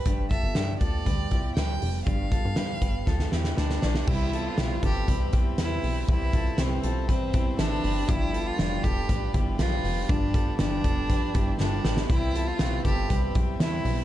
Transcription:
<<
  \new Staff \with { instrumentName = "Clean electric guitar" } { \time 4/4 \key c \major \tempo 4 = 120 <d' g'>8 <f' a'>8 <d' g'>8 <f' a'>8 <g' b'>8 <e' g'>8 <g' b'>4 | <d' g'>8 <f' a'>8 <g' b'>8 <g' b'>8 <f' a'>8 <e' g'>8 <g' b'>8 <b' d''>8 | <e' g'>8 <f' a'>8 <e' g'>8 <f' a'>8 <g' b'>8 <e' g'>8 <g' b'>4 | <e' g'>8 <f' a'>8 <e' g'>8 <f' a'>8 <g' b'>8 <e' g'>8 <e' a'>8 <g' b'>8 |
<d' g'>8 <f' a'>8 <d' g'>8 <f' a'>8 <g' b'>8 <e' g'>8 <g' b'>4 | <d' g'>8 <f' a'>8 <d' g'>8 <f' a'>8 <g' b'>8 <e' g'>8 <f' a'>8 <g' b'>8 | <e' g'>8 <f' a'>8 <e' g'>8 <f' a'>8 <g' b'>8 <e' g'>8 <g' b'>4 | }
  \new Staff \with { instrumentName = "Transistor combo organ" } { \time 4/4 \key c \major r1 | r1 | <c' g' b' e''>1~ | <c' g' b' e''>1 |
<f d' g' b'>1~ | <f d' g' b'>1 | <c' g' b' e''>1 | }
  \new Staff \with { instrumentName = "Violin" } { \time 4/4 \key c \major b'8 e''4 d''4. g''4 | f''2. d'4 | e'8. f'8. g'4 r8 e'4 | e'4 c'4 c'4 d'4 |
e'8. f'8. g'4 r8 f'4 | d'4 d'2 d'4 | e'8. f'8. g'4 r8 e'4 | }
  \new Staff \with { instrumentName = "Steel-string acoustic guitar" } { \clef bass \time 4/4 \key c \major <g, d f g b g'>8 <f g b g'>8 <f g b g'>8 <f g b g'>8 <g, d f g b g'>8 <f g b g'>8 <f g b g'>8 <f g b g'>8 | <g, d f g b g'>8 <f g b g'>8 <f g b g'>8 <f g b g'>8 <g, d f g b g'>8 <f g b g'>8 <f g b g'>8 <f g b g'>8 | <c e g b e'>8 <g b e'>8 <c e g b e'>8 <g b e'>8 <e g b e'>8 <g b e'>8 <c e g b e'>8 <g b e'>8 | <c e g b e'>8 <g b e'>8 <c e g b e'>8 <g b e'>8 <e g b e'>8 <g b e'>8 <c e g b e'>8 <g b e'>8 |
<g, d f g b g'>8 <f g b g'>8 <g, d f g b g'>8 <f g b g'>8 <f g b>8 <f g b g'>8 <g, d f g b g'>8 <f g b g'>8 | <g, d f g b g'>8 <f g b g'>8 <g, d f g b g'>8 <f g b g'>8 <f g b g'>8 <f g b g'>8 <g, d f g b g'>8 <f g b g'>8 | <c e g b e'>8 <g b e'>8 <c e g b e'>8 <g b e'>8 <e g b e'>8 <g b e'>8 <c e g b e'>8 <g b e'>8 | }
  \new Staff \with { instrumentName = "Analog synth bass" } { \clef bass \time 4/4 \key c \major g,,8. g,,16 g,8 d,8 d,8 c,8 d,8 f,,8 | g,,8. g,16 g,8 g,,8 d,8 e,8 d,8 b,,8 | c,4 b,,8 g,,8 c,8 b,,8 e,8 b,,8 | c,4 c,8 b,,4. a,,8 g,,8 |
g,,4 f,,8 e,,8 a,,8 g,,8 b,,8 f,,8 | g,,4 g,,8 f,,8. r16 g,,8 g,,8 a,,8 | c,4 b,,8 g,,8 c,8 b,,8 e,8 b,,8 | }
  \new DrumStaff \with { instrumentName = "Drums" } \drummode { \time 4/4 <hh bd>8 <hh bd>8 <hh sn>8 <hh bd>8 <hh bd>8 <hh bd>8 <hh sn>8 hho8 | <hh bd>8 <hh bd>8 <hh sn>8 <hh bd>8 <bd sn>16 sn16 sn16 sn16 sn16 sn16 sn16 sn16 | <cymc bd>8 hh8 <hh sn>8 <hh bd>8 <hh bd>8 <hh bd>8 <hh sn>8 hho8 | <hh bd>8 <hh bd>8 <hh sn>8 hh8 <hh bd>8 <hh bd>8 <hh sn>8 hho8 |
<hh bd>8 hh8 <hh sn>8 <hh bd>8 <hh bd>8 <hh bd>8 <hh sn>8 hho8 | <hh bd>8 <hh bd>8 <hh sn>8 <hh bd>8 <hh bd>8 <hh bd>8 sn8 sn16 sn16 | <hh bd>8 hh8 <hh sn>8 <hh bd>8 <hh bd>8 <hh bd>8 <hh sn>8 hho8 | }
>>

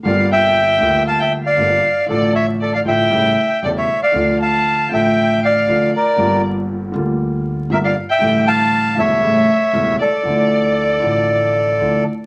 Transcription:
<<
  \new Staff \with { instrumentName = "Violin" } { \time 4/4 \key d \minor \tempo 4 = 117 f''8 g''4. a''16 g''8 f''4~ f''16 | d''8 e''8 d''16 f''16 g''4. d''16 e''8 f''16~ | f''8 a''4 g''4 f''4 d''8~ | d''8 r2 r8 e''16 f''8 g''16~ |
g''8 a''4 e''2 d''8~ | d''2.~ d''8 r8 | }
  \new Staff \with { instrumentName = "Bandoneon" } { \time 4/4 \key d \minor <d'' f''>8 <e'' g''>4. <f'' a''>16 <e'' g''>8 <d'' f''>4~ <d'' f''>16 | <a' d''>8 <cis'' e''>8 <a' d''>16 <d'' f''>16 <e'' g''>4. <a' d''>16 <cis'' e''>8 <d'' f''>16~ | <d'' f''>8 <f'' a''>4 <e'' g''>4 <d'' f''>4 <bes' d''>8~ | <bes' d''>8 r2 r8 <bes' e''>16 <d'' f''>8 <e'' g''>16~ |
<e'' g''>8 <f'' a''>4 <cis'' e''>2 <a' d''>8~ | <a' d''>2.~ <a' d''>8 r8 | }
  \new Staff \with { instrumentName = "Grand piano" } { \clef bass \time 4/4 \key d \minor <g,, g, d g bes f'>4. <d, d g bes f'>4. <g,, g, d g bes f'>8 r8 | <a,, a, d f a f'>4. <a,, a, d f a f'>8 <a,, a, cis g a e'>8 r8 <e,, e, cis g a e'>8 r8 | <d, d f a f'>4. <a,, a, d f a f'>4. <d, d f a f'>8 r8 | <g,, g, d g bes f'>4. <d, d g bes f'>4. <g,, g, d g bes f'>8 r8 |
<a,, a, d e g a>4. <e,, e, d g a e'>8 <a,, a, cis g a e'>8 r8 <e,, e, cis g a e'>8 r8 | <d, d f a e'>4. <a,, a, d f a e'>4. <d, d f a e'>8 r8 | }
  \new Staff \with { instrumentName = "Upright bass" } { \clef bass \time 4/4 \key d \minor g,,4. d,4. g,,8 r8 | a,,4. a,,8 a,,8 r8 e,,8 r8 | d,4. a,,4. d,8 r8 | g,,4. d,4. g,,8 r8 |
a,,4. e,,8 a,,8 r8 e,,8 r8 | d,4. a,,4. d,8 r8 | }
>>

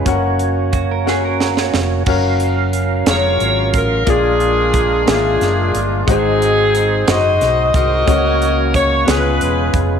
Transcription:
<<
  \new Staff \with { instrumentName = "Clean electric guitar" } { \time 6/8 \key fis \major \tempo 4. = 60 r4 fis'16 ais'16 gis'16 ais'8 fis'8. | r2. | r2. | r2. |
r2. | }
  \new Staff \with { instrumentName = "Saxophone section" } { \time 6/8 \key fis \major << { r2. | r4. cis''4 ais'8 | gis'4. gis'4 r8 | gis'4. dis''4 dis''8~ |
dis''4 cis''8 b'4 r8 | } \\ { r2. | r4. <eis' ais'>4. | <d' eis'>4. <d' eis'>4. | <bis dis'>4. <fis' bis'>4 <fis' ais'>8~ |
<fis' ais'>4 r8 <eis' gis'>4. | } >> }
  \new Staff \with { instrumentName = "Grand piano" } { \time 6/8 \key fis \major <cis' fis' ais' fis''>4 r8 <cis' fis' ais' fis''>4 r8 | <cis' fis' ais' eis''>4 r8 <fis cis' gis' ais' eis''>4 r8 | <ais eis' gis' d''>4 r8 <ais eis' gis' e'' eis''>4 r8 | <gis dis' fis' bis'>4 r8 <gis dis' fis' bis'>4 r8 |
<a ais cis' fis' cis''>4 r8 <b eis' gis' cis''>4 r8 | }
  \new Staff \with { instrumentName = "Grand piano" } { \clef bass \time 6/8 \key fis \major r2. | r2. | ais,4. r4. | gis,4. r4. |
cis4. cis4. | }
  \new Staff \with { instrumentName = "Tonewheel organ" } { \time 6/8 \key fis \major <ais cis' fis' cis''>2. | <fis cis' ais' eis''>2. | <gis b d' eis' ais'>2. | <gis dis' fis' b' bis'>2. |
<ais cis' fis' bis' cis''>4. <gis cis' eis' b'>4. | }
  \new Staff \with { instrumentName = "Fingered electric bass" } { \clef bass \time 6/8 \key fis \major fis,,2~ fis,,8 eis,,8 | fis,,4. eis,,8 gis,,8 a,,8 | ais,,4. gis,,8 fis,,8 g,,8 | gis,,4. fis,,8 b,,8 bis,,8 |
cis,4. cis,8 e,,8 eis,,8 | }
  \new DrumStaff \with { instrumentName = "Drums" } \drummode { \time 6/8 <hh bd>8 hh8 <hh bd>8 sn8 sn16 sn16 sn8 | <cymc bd>8 hh8 hh8 <hh sn>8 hh8 <hh bd>8 | <hh bd>8 hh8 <hh bd>8 <hh sn>8 <hh sn>8 hh8 | <hh bd>8 hh8 hh8 <hh sn>8 <hh sn>8 <hh bd>8 |
<hh bd>8 hh8 <hh bd>8 <hh sn>8 hh8 <hh bd>8 | }
>>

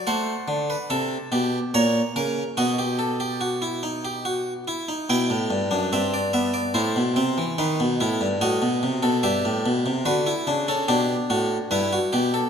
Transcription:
<<
  \new Staff \with { instrumentName = "Harpsichord" } { \time 3/4 \key e \minor \tempo 4 = 72 << { fis''4 a''4 ais''4 | dis''2~ dis''8 r8 | g''4 e''16 d''16 e''16 d''16 c''4 | b'4 dis''4 e''4 |
b'8. a'16 g'8 fis'8 b'8 g'8 | } \\ { c''8. b'16 a'8 g'8 cis''8 ais'8 | fis'16 g'16 a'16 g'16 fis'16 e'16 dis'16 g'16 fis'8 e'16 dis'16 | e'8. d'16 c'8 b8 e'8 c'8 | dis'8 e'8 fis'8. a'16 g'4 |
fis'16 e'16 d'16 cis'16 d'4 e'16 fis'16 r16 a'16 | } >> }
  \new Staff \with { instrumentName = "Harpsichord" } { \clef bass \time 3/4 \key e \minor a8 d8 c8 b,8 ais,8 cis8 | b,2~ b,8 r8 | b,16 a,16 g,16 fis,16 g,4 a,16 b,16 c16 e16 | dis16 b,16 a,16 g,16 a,16 b,16 c16 b,16 g,16 a,16 b,16 c16 |
d8 cis8 b,8 a,8 g,8 b,8 | }
>>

